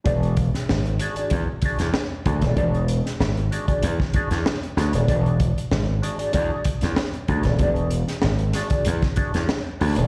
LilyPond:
<<
  \new Staff \with { instrumentName = "Clean electric guitar" } { \time 4/4 \key e \mixolydian \tempo 4 = 95 <d' fis' gis' d''>8 r4 <d' fis' gis' d''>16 <d' fis' gis' d''>16 r8 <d' fis' gis' d''>16 r8. <d' fis' gis' d''>16 <d' fis' gis' d''>16 | <d' fis' gis' d''>8 r4 <d' fis' gis' d''>16 <d' fis' gis' d''>16 r8 <d' fis' gis' d''>16 r8. <d' fis' gis' d''>16 <d' fis' gis' d''>16 | <d' fis' gis' d''>8 r4 <d' fis' gis' d''>16 <d' fis' gis' d''>16 <d' fis' gis' d''>8 r4 <d' fis' gis' d''>16 <d' fis' gis' d''>16 | <d' fis' gis' d''>8 r4 <d' fis' gis' d''>16 <d' fis' gis' d''>16 r8 <d' fis' gis' d''>16 r8. <d' fis' gis' d''>16 <d' fis' gis' d''>16 | }
  \new Staff \with { instrumentName = "Slap bass" } { \clef bass \time 4/4 \key e \mixolydian e,,8. r16 gis,,8 r8 e,16 r8 e,16 r8 d,16 dis,,16 | e,,8. r16 gis,,8 r8 e,16 r8 e,16 r8 d,16 dis,,16 | e,,8. r16 gis,,8 r8 e,16 r8 e,16 r8 d,16 dis,,16 | e,,8. r16 gis,,8 r8 e,16 r8 e,16 r8 d,16 dis,,16 | }
  \new DrumStaff \with { instrumentName = "Drums" } \drummode { \time 4/4 <hh bd>16 hh16 <hh bd>16 <hh sn>16 sn16 hh16 hh16 hh16 <hh bd>8 <hh bd>16 <hh sn>16 sn8 <hh bd>16 <hh bd sn>16 | <hh bd>16 hh16 hh16 <hh sn>16 sn16 hh16 hh16 <hh bd>16 hh16 <bd sn>16 <hh bd>16 <hh sn>16 sn16 hh16 <hh sn>16 hh16 | <hh bd>16 hh16 <hh bd>16 hh16 sn8 hh16 hh16 <hh bd>8 <hh bd>16 <hh sn>16 sn16 hh16 <hh bd>16 <hh bd sn>16 | <hh bd>16 hh16 hh16 <hh sn>16 sn16 hh16 <hh sn>16 <hh bd>16 hh16 <hh bd sn>16 <hh bd>16 <hh sn>16 sn8 hho16 hh16 | }
>>